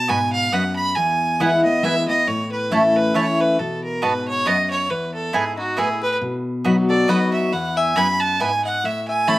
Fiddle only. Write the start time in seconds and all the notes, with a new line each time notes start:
Already playing: A5
0.09 G#5
0.33 F5
0.53 F#5
0.76 B5
0.95 G#5
1.41 F#5
1.64 D#5
1.84 E5
2.08 D#5
2.27 C#5
2.51 B4
2.72 A4
2.96 B4
3.15 C#5
3.40 B4
3.59 A4
3.84 A#4
4.03 B4
4.28 C#5
4.47 D#5
4.70 C#5
4.90 B4
5.14 A4
5.35 G#4
5.58 F#4
5.78 G#4
6.02 B4
6.89 D5
7.09 D#5
7.33 E5
7.53 F#5
7.76 G#5
7.96 B5
8.20 A5
8.40 G#5
8.65 F#5
8.85 E5
9.08 G#5
9.28 B5